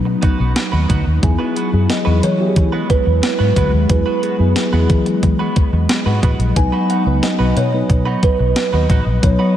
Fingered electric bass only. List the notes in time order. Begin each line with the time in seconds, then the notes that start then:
Already playing: B2
0.40 B1
0.73 D#2
0.90 D2
1.07 D#2
1.23 E2
1.73 F#2
2.07 E2
2.23 E3
2.56 E3
3.07 E2
3.40 G#2
3.56 D2
3.73 D#2
3.90 E2
4.39 F#2
4.73 E2
4.90 E3
5.23 E3
5.73 E2
6.06 G#2
6.23 A1
6.39 A#1
7.06 C#2
7.40 B1
7.56 B2
7.90 B2
8.40 B1
8.73 D#2
8.89 A1
9.06 A#1
9.23 B1